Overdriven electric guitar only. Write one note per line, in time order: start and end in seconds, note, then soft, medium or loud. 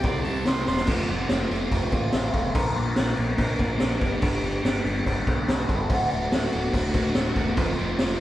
0.02 0.45 C3 loud
0.02 0.46 G3 loud
0.02 0.28 C4 loud
0.02 0.26 E4 loud
0.02 0.25 G4 loud
0.07 0.23 C5 loud
0.25 0.46 E4 medium
0.25 0.48 G4 medium
0.25 0.49 C5 medium
0.29 0.44 C4 medium
0.46 0.86 C4 medium
0.46 0.87 E4 medium
0.46 0.88 G4 medium
0.50 0.89 C5 medium
0.88 1.30 F2 loud
0.88 1.30 C3 loud
0.88 1.13 F3 loud
0.88 1.11 A3 loud
0.88 1.09 C4 medium
0.92 1.09 F4 loud
1.09 1.30 A3 medium
1.09 1.31 C4 medium
1.09 1.33 F4 medium
1.13 1.28 F3 medium
1.29 1.52 F3 medium
1.29 1.51 A3 medium
1.29 1.50 C4 medium
1.33 1.48 F4 loud
1.50 1.94 C3 medium
1.50 1.70 F3 medium
1.50 1.71 A3 medium
1.50 1.73 C4 medium
1.50 1.74 F4 loud
1.54 1.94 F2 medium
1.71 1.94 F3 medium
1.71 1.93 A3 medium
1.71 1.92 C4 medium
1.75 1.90 F4 medium
1.91 2.13 A3 medium
1.91 2.14 C4 medium
1.91 2.15 F4 medium
1.96 2.12 F3 medium
2.11 2.52 F2 medium
2.11 2.54 C3 loud
2.11 2.35 F3 medium
2.11 2.34 A3 medium
2.11 2.32 C4 loud
2.16 2.30 F4 medium
2.31 2.54 A3 medium
2.31 2.53 C4 medium
2.31 2.52 F4 medium
2.36 2.53 F3 medium
2.53 2.96 A#2 loud
2.53 2.96 F3 medium
2.53 2.76 A#3 loud
2.53 2.76 D4 loud
2.53 2.74 F4 loud
2.57 2.72 A#4 loud
2.73 2.95 D4 medium
2.73 2.96 F4 medium
2.73 2.97 A#4 medium
2.77 2.92 A#3 medium
2.93 3.16 A#3 medium
2.93 3.15 D4 medium
2.93 3.14 F4 medium
2.98 3.12 A#4 loud
3.14 3.34 A#3 medium
3.14 3.37 D4 medium
3.14 3.38 F4 medium
3.14 3.39 A#4 medium
3.18 3.60 A#2 medium
3.18 3.60 F3 medium
3.35 3.59 A#3 medium
3.35 3.59 D4 medium
3.39 3.57 F4 medium
3.39 3.55 A#4 medium
3.56 3.78 D4 medium
3.56 3.79 F4 medium
3.56 3.78 A#4 medium
3.60 3.77 A#3 medium
3.76 3.98 A#2 medium
3.76 3.98 F3 medium
3.76 3.99 A#3 loud
3.76 3.98 D4 medium
3.76 3.98 F4 medium
3.76 3.98 A#4 loud
3.98 4.17 G2 medium
3.98 4.19 D3 medium
3.98 4.20 G3 medium
3.98 4.20 B3 medium
3.98 4.23 D4 medium
3.98 4.22 G4 loud
4.19 4.62 G2 medium
4.19 4.63 D3 medium
4.19 4.43 G3 loud
4.19 4.42 B3 loud
4.23 4.41 D4 loud
4.23 4.39 G4 loud
4.40 4.62 B3 medium
4.40 4.64 D4 medium
4.40 4.65 G4 medium
4.45 4.60 G3 medium
4.62 4.84 G3 medium
4.62 4.84 B3 medium
4.62 4.83 D4 medium
4.66 4.82 G4 medium
4.83 5.28 G2 medium
4.83 5.27 D3 medium
4.83 5.02 G3 medium
4.83 5.04 B3 medium
4.83 5.05 D4 medium
4.83 5.07 G4 medium
5.03 5.28 G3 medium
5.03 5.27 B3 medium
5.03 5.26 D4 medium
5.08 5.24 G4 medium
5.25 5.49 B3 medium
5.25 5.49 D4 medium
5.25 5.50 G4 medium
5.30 5.47 G3 medium
5.47 5.88 G2 medium
5.47 5.88 D3 medium
5.47 5.70 G3 medium
5.47 5.69 B3 loud
5.47 5.68 D4 loud
5.51 5.66 G4 loud
5.67 5.89 G3 medium
5.67 5.89 B3 medium
5.67 5.88 D4 medium
5.67 5.88 G4 medium
5.88 6.31 D2 loud
5.88 6.29 A2 medium
5.88 6.14 D3 loud
5.88 6.12 A3 medium
5.92 6.09 F#4 loud
6.10 6.33 A3 medium
6.10 6.33 F#4 medium
6.15 6.31 D3 medium
6.30 6.54 A2 medium
6.30 6.53 D3 medium
6.30 6.52 A3 loud
6.35 6.51 F#4 medium
6.52 6.96 D2 medium
6.52 6.70 A2 medium
6.52 6.72 D3 medium
6.52 6.73 A3 medium
6.52 6.75 F#4 medium
6.71 7.13 A2 medium
6.71 6.96 D3 medium
6.71 6.94 A3 medium
6.76 6.91 F#4 loud
6.92 7.15 A3 medium
6.92 7.15 F#4 medium
6.97 7.14 D3 medium
7.12 7.53 D2 loud
7.12 7.55 A2 loud
7.12 7.37 D3 medium
7.12 7.34 A3 medium
7.17 7.32 F#4 medium
7.33 7.56 A3 medium
7.33 7.54 F#4 medium
7.38 7.56 D3 medium
7.54 7.97 F2 loud
7.54 7.98 C3 medium
7.54 7.79 F3 loud
7.54 7.78 A3 loud
7.58 7.76 C4 loud
7.58 7.75 F4 loud
7.75 7.97 A3 medium
7.75 7.99 C4 medium
7.75 8.01 F4 medium
7.80 7.96 F3 medium
7.97 8.19 F3 medium
7.97 8.19 A3 medium
7.97 8.17 C4 medium
8.01 8.16 F4 loud